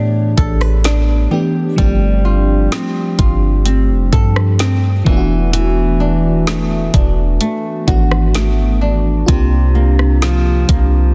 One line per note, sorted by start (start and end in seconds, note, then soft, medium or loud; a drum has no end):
0.00 0.35 A2 loud
0.00 1.26 E3 medium
0.00 1.27 A3 medium
0.00 1.78 A3 medium
0.00 1.28 B3 medium
0.00 0.84 D4 medium
0.00 1.28 D4 medium
0.00 1.29 G4 medium
0.00 1.31 G4 medium
0.37 1.28 A1 loud
0.37 0.61 A4 medium
0.37 kick medium
0.37 closed hi-hat medium
0.61 1.88 B4 medium
0.61 cross-stick medium
0.84 2.71 D4 medium
0.84 snare loud
0.84 closed hi-hat medium
1.31 1.78 E3 medium
1.31 1.76 A3 medium
1.31 1.79 B3 medium
1.31 1.79 D4 medium
1.31 2.25 G4 medium
1.31 1.79 G4 medium
1.76 2.68 G1 loud
1.76 5.01 F3 medium
1.76 5.06 G3 medium
1.76 5.02 A3 medium
1.76 5.03 C4 medium
1.76 kick loud
1.76 closed hi-hat medium
1.80 5.03 D4 medium
1.80 5.04 G4 medium
2.25 3.17 F4 medium
2.72 3.64 C4 medium
2.72 snare loud
2.72 closed hi-hat medium
3.19 3.91 G1 loud
3.19 5.16 F4 medium
3.19 kick loud
3.19 closed hi-hat medium
3.66 4.58 C4 medium
3.66 closed hi-hat medium
3.90 4.12 F1 loud
4.12 5.03 G2 loud
4.12 7.62 A4 medium
4.12 kick medium
4.12 closed hi-hat medium
4.36 cross-stick medium
4.59 5.16 C4 medium
4.59 snare loud
4.59 closed hi-hat medium
5.05 6.90 E1 loud
5.05 7.83 E3 medium
5.05 5.52 E3 medium
5.05 7.83 A3 medium
5.05 7.84 B3 medium
5.05 7.85 D4 medium
5.05 kick loud
5.10 5.15 F4 medium
5.17 7.89 F#4 medium
5.53 9.28 E3 medium
5.53 closed hi-hat medium
6.00 6.94 D4 medium
6.47 7.39 A3 medium
6.47 snare loud
6.47 closed hi-hat medium
6.94 7.39 E1 loud
6.94 8.81 D4 medium
6.94 kick loud
6.94 closed hi-hat medium
7.41 8.33 A3 medium
7.41 closed hi-hat medium
7.87 9.24 G#1 loud
7.87 9.28 E3 medium
7.87 9.28 A3 medium
7.87 9.29 B3 medium
7.87 9.29 D4 medium
7.87 9.38 F#4 medium
7.87 9.29 F#4 medium
7.87 kick medium
7.87 closed hi-hat medium
8.11 cross-stick loud
8.34 9.38 A3 medium
8.34 snare loud
8.34 closed hi-hat medium
8.81 11.14 D4 medium
9.26 10.65 C2 loud
9.26 11.14 C3 medium
9.26 11.14 A#3 medium
9.26 11.14 C4 medium
9.26 11.14 F4 medium
9.26 kick loud
9.26 closed hi-hat medium
9.30 11.14 D4 medium
9.30 11.14 G4 medium
9.75 10.68 A#3 medium
9.99 cross-stick medium
10.22 11.14 F3 medium
10.22 snare loud
10.22 closed hi-hat medium
10.69 11.14 C2 loud
10.69 11.14 A#3 medium
10.69 kick loud
10.69 closed hi-hat medium